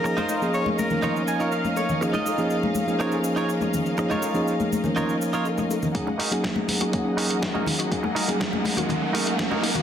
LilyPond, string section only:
\new Staff \with { instrumentName = "String section" } { \time 4/4 \key ges \lydian \tempo 4 = 122 <des' bes' ees'' f''>1~ | <des' bes' ees'' f''>1~ | <des' bes' ees'' f''>1 | <bes aes' ees'' ges''>1~ |
<bes aes' ees'' ges''>1 | }